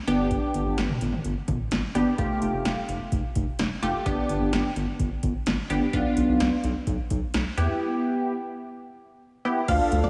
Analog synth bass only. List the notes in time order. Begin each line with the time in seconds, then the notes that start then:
0.07 G1
0.54 G1
0.66 G1
0.78 G1
1.01 G1
1.25 G1
1.48 G1
1.72 G1
1.95 G1
2.18 F1
2.42 F1
2.54 F1
2.65 F1
2.89 F1
3.12 F1
3.36 F1
3.59 F1
3.83 F1
4.06 G1
4.29 G1
4.41 G1
4.53 G1
4.76 G1
5.00 G1
5.23 G1
5.47 G1
5.70 G1
5.93 B1
6.17 B1
6.29 B1
6.40 B1
6.64 B1
6.87 B1
7.11 B1
7.34 B1
7.57 E2
9.68 D2
9.92 D2
10.04 D2